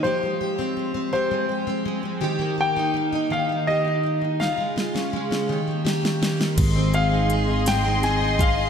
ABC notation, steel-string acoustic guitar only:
X:1
M:6/8
L:1/16
Q:3/8=55
K:Ebmix
V:1 name="Steel-string acoustic guitar"
[F,G] A, G C A, C [F,G] A, G C A, C | [E,G] B, G E B, E [E,G] B, G E B, E | [D,F] A, F D A, D [E,G] B, G D B, D | [K:Ablyd] A,, C A E A E A,, C A E A E |]